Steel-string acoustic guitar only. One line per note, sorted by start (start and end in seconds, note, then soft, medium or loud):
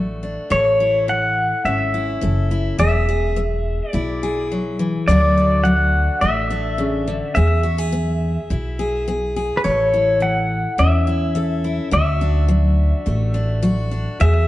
0.00 0.45 F#3 medium
0.00 1.65 A3 medium
0.00 0.22 D4 medium
0.00 0.51 F#4 medium
0.23 0.48 D4 medium
0.50 1.02 A2 medium
0.50 2.21 A4 medium
0.80 1.93 E4 medium
1.08 1.60 E3 medium
1.66 2.76 C#4 medium
1.94 2.50 E4 medium
2.21 2.74 E3 medium
2.21 2.76 A4 medium
2.51 2.76 E4 medium
2.79 3.31 E3 medium
2.79 3.07 G#4 medium
3.09 4.22 G#4 medium
3.36 3.88 B3 medium
3.93 4.45 B2 medium
3.93 5.05 E4 medium
4.23 5.05 G#4 medium
4.52 4.79 F#3 medium
4.79 5.08 E3 medium
5.08 5.60 D3 medium
5.08 5.64 F#3 medium
5.08 6.21 A3 medium
5.08 5.36 D4 medium
5.08 7.36 F#4 medium
5.38 6.49 D4 medium
5.65 6.16 F#3 medium
6.21 6.73 A2 medium
6.21 7.36 A3 medium
6.50 7.33 D4 medium
6.78 7.07 C#3 medium
7.08 7.36 D3 medium
7.36 7.87 E3 medium
7.36 7.63 G#4 medium
7.63 7.78 F#4 medium
7.78 8.78 G#4 medium
7.92 8.44 B3 medium
8.50 9.02 B2 medium
8.50 9.61 E4 medium
8.79 9.07 G#4 medium
9.08 9.59 B3 medium
9.08 9.35 G#4 medium
9.36 9.61 G#4 medium
9.64 10.15 A2 medium
9.64 11.35 A4 medium
9.94 11.06 E4 medium
10.20 10.72 E3 medium
10.78 11.29 A2 medium
10.78 11.89 C#4 medium
11.07 11.63 E4 medium
11.35 11.86 E3 medium
11.35 11.89 A4 medium
11.64 11.89 E4 medium
11.91 12.43 D3 medium
11.91 13.62 F#4 medium
12.21 13.33 D4 medium
12.48 13.00 F#3 medium
13.06 13.57 A2 medium
13.06 14.20 A3 soft
13.34 13.90 D4 medium
13.63 14.14 F#3 medium
13.63 14.20 F#4 medium
13.91 14.17 D4 medium
14.20 14.48 E3 medium
14.20 14.47 G#4 medium